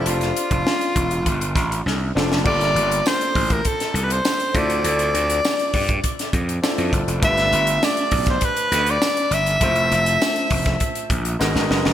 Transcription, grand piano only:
X:1
M:4/4
L:1/8
Q:1/4=100
K:Gdor
V:1 name="Grand piano"
[CDFAd]6- [CDFAd] [CDFAd] | [B,FGAd]6- [B,FGAd] [CEFAd]- | [CEFAd]6 [CEFAd]2 | [A,DFG=B]8 |
[A,CEFc]6 [_A,_C_E_GB]2 |]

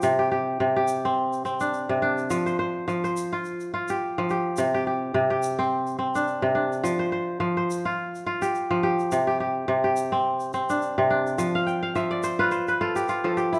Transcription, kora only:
X:1
M:4/4
L:1/16
Q:"Swing 16ths" 1/4=106
K:Flyd
V:1 name="Kora"
G G G3 G3 z3 D3 D2- | D c c3 c3 z3 G3 G2- | G G G3 G3 z3 D3 D2- | D c c3 c3 z3 G3 G2- |
G G G3 G3 z3 D3 D2- | D f g f e d c B c B A G F A G E |]
V:2 name="Kora" clef=bass
C,2 z2 C,2 z C2 z C2 z C,2 z | F,2 z2 F,2 z F2 z F2 z F,2 z | C,2 z2 C,2 z C2 z C2 z C,2 z | F,2 z2 F,2 z F2 z F2 z F,2 z |
C,2 z2 C,2 z C2 z C2 z C,2 z | F,2 z2 F,2 z F2 z F2 z F,2 z |]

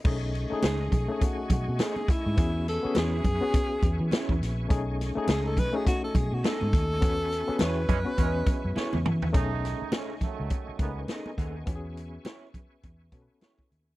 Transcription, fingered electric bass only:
X:1
M:4/4
L:1/16
Q:"Swing 16ths" 1/4=103
K:Bmix
V:1 name="Fingered electric bass" clef=bass
B,,,3 z C,,2 B,,, z3 B,,, B,, z3 G,, | E,,3 z E,,2 F,, z3 E,, E, z E,, ^A,,,2 | B,,,3 z C,,2 B,,, z3 B,,, B,, z G,, D,,2 | E,,3 z E,,2 F,, z E,,2 z F,, z E,, E,2 |
B,,,3 z4 C,, z2 C,,2 z2 D,,2 | E,,4 z4 E,,2 B,, z3 D,,2 |]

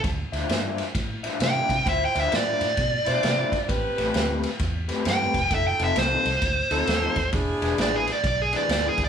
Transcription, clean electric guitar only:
X:1
M:4/4
L:1/8
Q:"Swing" 1/4=132
K:Ddor
V:1 name="Clean electric guitar"
z [DFce] [DFce] z2 [DFce] [DFce] z | z [DFce] [DFce] z2 [DFce] [DFce] z | z [A,CGB] [A,CGB] z2 [A,CGB] [A,CGB] z | z [F,C_EA] [EA] z2 [F,CEA] [F,CEA] z |
z [E,B,D^G] [E,B,DG] z2 [E,B,DG] [E,B,DG] z |]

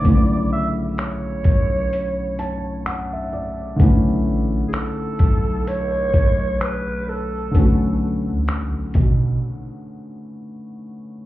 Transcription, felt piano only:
X:1
M:4/4
L:1/16
Q:"Swing 16ths" 1/4=64
K:Bm
V:1 name="Felt piano"
z8 z2 a2 f e d2 | z16 | z16 |]
V:2 name="Felt piano"
[C,D,A,B,E]16 | [D,A,B,CE]16 | [D,A,B,CF]16 |]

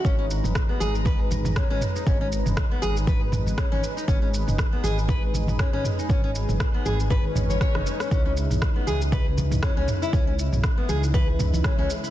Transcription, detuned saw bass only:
X:1
M:4/4
L:1/16
Q:"Swing 16ths" 1/4=119
K:G#m
V:1 name="Detuned saw bass" clef=bass
G,,,3 F,,, z2 G,,,3 G,,,3 z G,,, z2 | G,,,3 F,,, z2 G,,,3 G,,,3 z G,,, z2 | G,,,3 F,,, z2 G,,,3 G,,,3 z G,,, z2 | G,,,3 F,,, z2 G,,,3 G,,,3 z F,,, z2 |
C,,3 B,,, z2 C,,3 C,,3 z C,, z2 | C,,3 B,,, z2 C,,3 C,,3 z C,, z2 |]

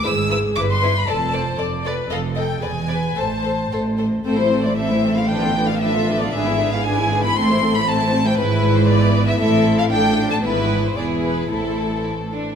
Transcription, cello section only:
X:1
M:2/4
L:1/8
Q:1/4=116
K:Am
V:1 name="Cello section" clef=bass
^G,,2 =G,,2 | F,,2 F,,2 | F,,2 E,,2 | A,,2 A,,2 |
A,,4- | A,,4 | ^G,,4 | A,,4 |
^G,,4 | A,,2 A,,2 | ^G,,2 E,,2 | A,,3 z |]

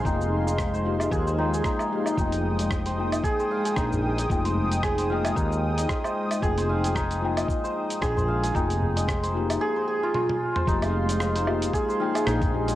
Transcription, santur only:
X:1
M:4/4
L:1/16
Q:"Swing 16ths" 1/4=113
K:Fm
V:1 name="Santur"
E z2 e2 c z2 A c E A E z2 e | E z2 e2 c z2 A c f A E z2 e- | e c z2 A c f A E z2 e2 c z2 | A c f A E z2 e2 c z2 A c f A |
E z2 e2 c z2 A c A F F z2 c | E z2 e2 c z2 A c f A E z2 e |]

